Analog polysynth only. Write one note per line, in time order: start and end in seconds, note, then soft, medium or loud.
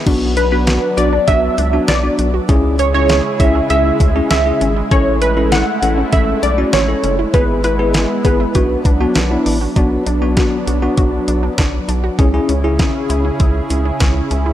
0.37 0.51 B4 medium
0.52 0.99 B4 medium
0.97 1.29 D5 loud
1.28 1.90 E5 loud
1.88 2.31 D5 medium
2.79 2.93 C#5 medium
2.94 3.41 C#5 loud
3.40 3.69 E5 loud
3.70 4.27 E5 loud
4.31 4.93 E5 loud
4.91 5.23 C#5 loud
5.22 5.53 B4 loud
5.52 6.14 F#5 loud
6.13 6.44 E5 loud
6.43 6.74 D5 loud
6.73 7.36 C#5 loud
7.34 7.63 B4 loud
7.64 8.24 B4 loud
8.25 9.12 B4 medium